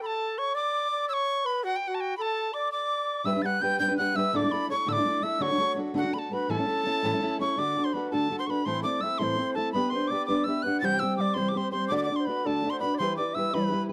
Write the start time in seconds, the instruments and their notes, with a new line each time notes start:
0.01 flute A4, tin whistle B5
0.06 tin whistle A5
0.38 flute C#5, tin whistle C#6
0.55 flute D5, tin whistle D6
0.91 flute D5
1.09 flute C#5, tin whistle E6
1.13 tin whistle C#6
1.45 flute B4, tin whistle B5
1.64 flute F#4, tin whistle F#5
1.76 tin whistle G5
1.87 flute F#4, tin whistle F#5
1.95 tin whistle A5
2.01 tin whistle G5
2.17 flute A4, tin whistle B5
2.22 tin whistle A5
2.54 flute D5, tin whistle D6
2.72 flute D5, tin whistle D6
3.24 steel-string acoustic guitar G3 D4 G4 B4, flute E5, tin whistle E6
3.33 steel-string acoustic guitar D4 G4 B4
3.42 steel-string acoustic guitar G3 D4 G4 B4, flute F#5, tin whistle F#6 A6
3.60 steel-string acoustic guitar G3 D4 G4 B4, flute G5, tin whistle G6
3.79 steel-string acoustic guitar G3 D4 G4 B4, flute G5, tin whistle G6
3.88 steel-string acoustic guitar D4 G4 B4
3.98 steel-string acoustic guitar G3 D4 G4 B4, flute F#5, tin whistle F#6
4.15 steel-string acoustic guitar G3 D4 G4 B4, flute E5, tin whistle E6
4.33 steel-string acoustic guitar A2 D3 A3 D4 E4 A4, flute D5, tin whistle D6 E6
4.42 steel-string acoustic guitar A3 D4 E4 A4
4.50 steel-string acoustic guitar A3 D4 E4 A4, tin whistle B5
4.68 steel-string acoustic guitar A3 D4 E4 A4, flute C#5, tin whistle C#6
4.86 steel-string acoustic guitar A2 D3 A3 D4 E4 A4, flute D5, tin whistle E6
4.93 steel-string acoustic guitar A4, tin whistle D6
4.97 steel-string acoustic guitar A3 D4 E4
5.05 steel-string acoustic guitar A3 D4 E4 A4
5.22 steel-string acoustic guitar A3 D4 E4 A4, flute E5, tin whistle E6
5.40 steel-string acoustic guitar D3 A3 D4 F#4 A4, flute C#5, tin whistle C#6
5.49 steel-string acoustic guitar D4 F#4 A4
5.58 steel-string acoustic guitar A3 D4 F#4 A4
5.76 steel-string acoustic guitar A3 D4 F#4 A4
5.94 steel-string acoustic guitar D3 A3 D4 F#4 A4, flute F#4, tin whistle F#5
6.03 steel-string acoustic guitar D4 F#4 A4
6.13 steel-string acoustic guitar A3 D4 F#4 A4, tin whistle B5
6.19 tin whistle A5
6.31 steel-string acoustic guitar A3 D4 F#4 A4, flute B4, tin whistle B5
6.49 steel-string acoustic guitar A2 E3 A3 C#4 E4 A4, flute A4, tin whistle A5
6.57 steel-string acoustic guitar A3 C#4 E4 A4
6.66 steel-string acoustic guitar A3 C#4 E4 A4
6.84 steel-string acoustic guitar A3 C#4 E4 A4
7.03 steel-string acoustic guitar A2 E3 A3 C#4 E4 A4
7.12 steel-string acoustic guitar A3 C#4 E4 A4
7.21 steel-string acoustic guitar A3 C#4 E4 A4
7.39 steel-string acoustic guitar A3 C#4 E4 A4, flute C#5, tin whistle C#6
7.57 steel-string acoustic guitar D3 A3 D4 F#4 A4, flute D5, tin whistle D6
7.76 steel-string acoustic guitar D4 F#4 A4
7.84 flute C5, tin whistle C6
7.93 steel-string acoustic guitar A3 D4 F#4, flute B4, tin whistle B5
7.97 steel-string acoustic guitar A4
8.11 steel-string acoustic guitar D3 A3 D4 F#4 A4, flute A4, tin whistle A5
8.29 steel-string acoustic guitar A3 D4 F#4 A4
8.39 flute C5, tin whistle C6
8.47 steel-string acoustic guitar F#4 A4, flute B4, tin whistle B5 C#6
8.51 steel-string acoustic guitar D4
8.65 steel-string acoustic guitar A2 E3 A3 C4 E4 A4, flute C5, tin whistle C6
8.83 steel-string acoustic guitar A3 C4 E4 A4, flute D5, tin whistle D6
9.01 steel-string acoustic guitar A3 C4 E4, flute E5, tin whistle E6
9.05 steel-string acoustic guitar A4
9.18 steel-string acoustic guitar A2 E3 A3 C4 E4 A4, tin whistle C6
9.23 flute C5
9.37 steel-string acoustic guitar A3 C4 E4 A4
9.54 steel-string acoustic guitar C4 E4 A4, flute A4, tin whistle A5
9.59 steel-string acoustic guitar A3
9.72 steel-string acoustic guitar B3 D4, flute B4, tin whistle B5
9.76 steel-string acoustic guitar G4 B4
9.90 steel-string acoustic guitar G4 B4, flute C5, tin whistle C6
9.95 steel-string acoustic guitar D4
10.07 steel-string acoustic guitar B3 D4, flute D5, tin whistle D6
10.12 steel-string acoustic guitar G4 B4
10.26 steel-string acoustic guitar D4 G4 B4, flute D5, tin whistle D6
10.30 steel-string acoustic guitar B3
10.44 steel-string acoustic guitar B3 D4, flute E5, tin whistle E6
10.49 steel-string acoustic guitar G4 B4
10.62 steel-string acoustic guitar G4 B4, flute F#5, tin whistle F#6
10.67 steel-string acoustic guitar D4
10.80 steel-string acoustic guitar C3 E3 G3 C4 G4 C5, flute G5, tin whistle A6
10.85 tin whistle G6
10.99 steel-string acoustic guitar G3 C4 G4 C5, tin whistle E6
11.17 steel-string acoustic guitar G3 C4 G4, flute D5, tin whistle D6
11.22 steel-string acoustic guitar C5
11.34 steel-string acoustic guitar C3 E3 G3 C4 G4 C5, flute C5, tin whistle C6
11.49 tin whistle D6
11.54 steel-string acoustic guitar G3 C4 G4 C5, tin whistle C6
11.61 flute C5
11.71 steel-string acoustic guitar G3 C4 G4 C5, flute C5, tin whistle C6
11.88 steel-string acoustic guitar D3 A3 D4 F#4 D5, tin whistle D6
11.92 flute D5
11.97 tin whistle D6
12.03 flute D5, tin whistle D6
12.08 steel-string acoustic guitar D4 F#4 D5
12.16 flute C5, tin whistle C6
12.25 steel-string acoustic guitar A3 D4, flute B4, tin whistle B5
12.29 steel-string acoustic guitar F#4 D5
12.43 steel-string acoustic guitar D4 F#4 D5, flute A4, tin whistle A5 B5
12.48 steel-string acoustic guitar D3 A3
12.64 steel-string acoustic guitar A3 D4 F#4 D5
12.70 flute C5, tin whistle C6
12.80 steel-string acoustic guitar F#4 D5, flute B4, tin whistle B5
12.84 steel-string acoustic guitar D4
12.95 flute C5 D5, tin whistle C6
13.00 steel-string acoustic guitar E3 G3 E4 G4 B4
13.17 steel-string acoustic guitar E4 G4 B4, flute D5, tin whistle D6
13.34 steel-string acoustic guitar G3 E4, flute E5, tin whistle E6
13.38 steel-string acoustic guitar G4 B4
13.51 steel-string acoustic guitar E4 G4 B4, flute B4, tin whistle B5
13.56 steel-string acoustic guitar E3 G3
13.70 steel-string acoustic guitar G3 E4 G4 B4
13.89 steel-string acoustic guitar B4